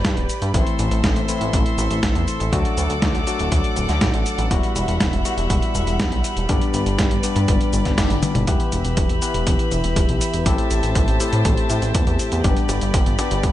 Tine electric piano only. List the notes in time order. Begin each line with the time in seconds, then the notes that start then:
0.54 A2 E3 A3 C4 E4
1.29 A2 E3 A3 C4 E4
2.53 F#3 A3 D4 F#4
3.27 F#3 A3 D4 F#4
4.51 G3 B3 E4 F#4
5.25 G3 B3 E4 F#4
6.49 G2 G3 B3 D4 G4
7.24 G2 G3 B3 D4 G4
7.98 G2 G3 B3 D4 G4
8.48 E3 B3 E4 G4 B4
9.22 E3 B3 E4 G4 B4
10.46 A2 C4 E4 G4 A4
11.20 A2 C4 E4 G4 A4
12.44 G2 G3 B3 D4 G4
13.19 G2 G3 B3 D4 G4